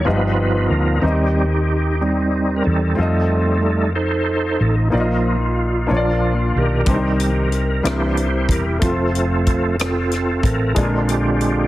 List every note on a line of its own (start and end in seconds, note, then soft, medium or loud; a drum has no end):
0.05 0.67 G1 medium
0.05 0.99 G2 soft
0.05 0.99 F3 soft
0.05 1.03 B3 soft
0.05 0.99 B3 soft
0.05 0.99 D#4 medium
0.05 1.03 F4 soft
0.05 0.99 F4 medium
0.05 1.03 G4 soft
0.05 0.67 B4 medium
0.05 1.04 D#5 soft
0.68 1.00 D2 medium
0.68 1.03 A#4 medium
1.00 2.61 D#2 medium
1.00 1.96 D#3 soft
1.00 1.45 G3 soft
1.00 2.92 C4 soft
1.00 1.46 C4 soft
1.00 2.93 D#4 soft
1.00 1.96 D#4 medium
1.00 2.03 G4 medium
1.04 2.94 G4 soft
1.04 2.95 D#5 medium
2.01 2.94 G3 medium
2.01 2.63 C4 medium
2.01 2.55 D#4 medium
2.56 2.64 A#4 medium
2.64 2.96 E2 medium
2.64 3.58 C4 medium
2.64 2.95 D#4 medium
2.64 3.61 A4 medium
2.95 4.56 F2 medium
2.95 3.90 G3 soft
2.95 3.90 A3 soft
2.95 4.87 C4 soft
2.95 3.90 D#4 soft
2.95 4.88 F4 soft
2.99 4.89 A4 soft
2.99 4.90 D#5 medium
3.62 3.93 A4 medium
3.95 4.88 D#4 medium
3.95 4.60 A4 medium
3.95 4.62 C5 medium
4.60 4.90 A1 medium
4.60 4.76 A4 medium
4.90 5.86 A#1 medium
4.90 5.86 A#2 soft
4.90 5.36 F3 soft
4.90 5.85 A#3 soft
4.90 5.37 A#3 medium
4.90 5.89 D#4 soft
4.90 5.87 F4 soft
4.90 4.99 D5 soft
4.95 5.37 D#4 soft
4.95 5.87 F4 medium
5.00 5.94 D#5 soft
5.87 6.51 A#1 medium
5.87 6.82 A#2 soft
5.87 6.86 A#3 medium
5.87 6.86 D4 soft
5.87 6.87 F4 soft
5.87 5.96 C#5 soft
5.91 6.34 F3 soft
5.91 6.34 A#3 medium
5.91 6.35 D4 medium
5.91 6.59 F4 medium
5.97 6.90 D5 medium
6.56 6.85 B1 medium
6.56 7.49 D#3 medium
6.56 7.49 G4 soft
6.56 7.53 A#4 medium
6.86 7.81 C2 medium
6.86 7.81 C3 soft
6.86 7.82 G3 soft
6.86 7.30 G3 soft
6.86 7.83 C4 soft
6.86 7.30 C4 soft
6.86 6.94 D4 soft
6.86 7.31 D#4 soft
6.86 7.85 C5 medium
6.86 kick medium
6.86 closed hi-hat medium
6.94 7.88 D#4 soft
7.20 closed hi-hat soft
7.52 7.83 A#4 medium
7.52 closed hi-hat soft
7.83 8.45 C2 medium
7.83 8.78 C3 soft
7.83 8.27 E3 soft
7.83 8.81 G3 soft
7.83 8.27 A#3 soft
7.83 8.79 C4 soft
7.83 8.28 D4 medium
7.83 8.82 E4 soft
7.83 8.79 E4 medium
7.83 8.78 G4 medium
7.83 8.83 A#4 medium
7.83 8.52 C5 medium
7.83 cross-stick medium
7.83 closed hi-hat medium
8.17 closed hi-hat soft
8.49 8.79 E1 medium
8.49 8.66 A#4 medium
8.49 kick medium
8.49 closed hi-hat soft
8.79 10.40 F1 medium
8.79 9.76 F3 soft
8.79 10.71 A3 soft
8.79 9.76 A3 soft
8.79 10.72 C4 soft
8.79 10.73 F4 soft
8.79 kick medium
8.79 closed hi-hat medium
8.83 9.76 C4 medium
8.83 9.76 F4 medium
8.83 9.77 A4 medium
8.83 10.74 C5 soft
9.15 closed hi-hat soft
9.47 kick medium
9.47 closed hi-hat soft
9.79 10.73 C4 medium
9.79 10.41 F4 medium
9.79 10.73 A4 medium
9.79 cross-stick medium
9.79 closed hi-hat medium
10.11 cross-stick soft
10.11 closed hi-hat soft
10.43 10.74 A1 medium
10.43 10.78 A#4 medium
10.43 kick medium
10.43 closed hi-hat soft
10.75 11.67 A#2 soft
10.75 11.67 D3 soft
10.75 11.67 G#3 soft
10.75 11.67 C4 soft
10.75 11.67 D4 soft
10.75 11.09 D4 medium
10.75 11.67 F4 medium
10.75 10.92 G#4 medium
10.75 kick medium
10.75 closed hi-hat medium
10.79 11.67 F4 soft
10.79 11.67 A#4 medium
11.09 11.67 D4 medium
11.09 11.67 G4 medium
11.09 closed hi-hat soft
11.41 closed hi-hat soft